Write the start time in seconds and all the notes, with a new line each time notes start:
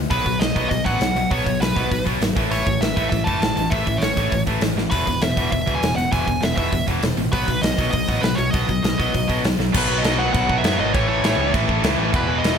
0.10 B1 B2 F#3 B3 B4, kick, open hi-hat
0.26 B1 B2 F#3, kick, open hi-hat
0.40 B1 B2 F#3 D#5, snare, open hi-hat
0.56 B1 B2 F#3 B3, kick, open hi-hat
0.70 B1 B2 F#3 D#5, kick, open hi-hat
0.86 A1 B2 F#3 B3 F#5, kick, open hi-hat
1.00 B1 B2 F#3, snare, open hi-hat
1.15 B1 B2 F#3, open hi-hat
1.31 B1 B2 F#3 B3 C#5, kick, open hi-hat
1.46 B1 B2 F#3, kick, open hi-hat
1.61 B1 B2 F#3 B4, snare, open hi-hat
1.76 B1 B2 F#3 B3, kick, open hi-hat
1.91 B1 B2 F#3, kick, open hi-hat
2.05 B1 B2 F#3 B3, kick, open hi-hat
2.21 G#1 B2 F#3, snare, open hi-hat
2.36 A1 A2 E3 A3, kick, open hi-hat
2.50 A1 A2 E3 A3 C#5, open hi-hat
2.66 A1 A2 E3, kick, open hi-hat
2.81 A1 A2 E3 E5, snare, open hi-hat
2.96 A1 A2 E3 A3, kick, open hi-hat
3.09 A1 A2 E3 E5, kick, open hi-hat
3.24 F#1 A2 E3 A3 A5, kick, open hi-hat
3.41 A1 A2 E3, snare, open hi-hat
3.57 A1 A2 E3, open hi-hat
3.70 A1 A2 E3 A3 E5, kick, open hi-hat
3.87 A1 A2 E3, kick, open hi-hat
3.98 A1 C#5, open hi-hat
4.03 A2 E3, snare
4.17 A1 A2 E3 A3, kick, open hi-hat
4.32 A1 A2 E3, kick, open hi-hat
4.47 A1 A2 E3 A3, kick, open hi-hat
4.61 A1 A2 E3, snare, open hi-hat
4.76 A1 A2 E3, snare
4.91 E1 E2 B2 E3 B4, kick, open hi-hat, splash
5.07 E1 E2 B2, kick, open hi-hat
5.20 E1 E2 B2 E5, snare, open hi-hat
5.37 E1 E2 B2 E3, kick, open hi-hat
5.52 E1 E2 B2 E5, kick, open hi-hat
5.67 C#2 E2 B2 E3, kick, open hi-hat
5.75 G#5
5.81 E1 E2 B2, snare, open hi-hat
5.96 E1 E2 B2 F#5, open hi-hat
6.12 E1 E2 B2 E3 G#5, kick, open hi-hat
6.27 E1 E2 B2, kick, open hi-hat
6.41 E1 E2 B2 E5, snare, open hi-hat
6.56 E1 E2 B2 E3 E5, kick, open hi-hat
6.72 E1 E2 B2, kick, open hi-hat
6.87 E1 E2 B2 E3, kick, open hi-hat
7.01 E1 E2 B2, snare, open hi-hat
7.17 A1 E2 B2, open hi-hat
7.32 B1 B2 F#3 B3 B4, kick, open hi-hat
7.48 B1 B2 F#3, kick, open hi-hat
7.62 B1 B2 F#3 D#5, snare, open hi-hat
7.77 B1 B2 F#3 B3, kick, open hi-hat
7.91 B1 B2 F#3 D#5, kick, open hi-hat
8.08 A1 B2 F#3 B3, kick, open hi-hat
8.21 B1 B2 F#3 B4, snare, open hi-hat
8.35 B1 B2 F#3 C#5, open hi-hat
8.51 B1 B2 F#3 B3 D#5, kick, open hi-hat
8.68 B1 B2 F#3, kick, open hi-hat
8.83 B1 B2 F#3, snare, open hi-hat
8.99 B1 B2 F#3 B3, kick, open hi-hat
9.14 B1 B2 F#3, kick, open hi-hat
9.28 B1 B2 F#3 B3, kick, open hi-hat
9.44 B1 B2 F#3, snare, open hi-hat
9.58 B1 B2 F#3, snare
9.73 B1 B2 D#3 F#3 B3 D#4 B4, kick, crash
9.77 B4
9.89 B1 B2 F#3 B3
9.98 D#5
10.03 B1 B2 F#3 B3, snare, crash
10.18 B2 F#3 B3 F#5
10.33 B1 B2 F#3 B3 F#5, kick, crash
10.49 B1 B2 F#3 B3, kick
10.58 E5
10.63 F#2 B2 F#3 B3, snare, crash
10.78 G#1 B2 F#3 B3 D#5
10.93 A1 A2 E3 A3 C#4 E4 C#5, kick, crash
11.07 A2 E3 A3 C#5
11.22 A1 A2 E3 A3, snare, crash
11.37 C#2 A2 E3 A3
11.53 A1 A2 E3 A3, kick, crash
11.69 A1 A2 E3 A3, kick
11.83 C#2 A2 E3 A3, snare, crash
11.98 A1 A2 E3 A3
12.12 E1 E2 B2 E3 G#3 B3 E4 B4, kick, crash
12.27 E1 E2 B2 E3
12.38 D#5
12.43 E1 E2 B2 E3, snare, crash